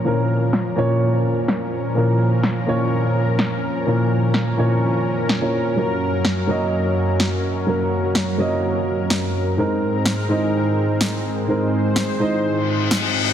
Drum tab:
SD |--o---o-|--o---o-|--o---o-|--o---o-|

SD |--o---o-|--o---o-|--o---o-|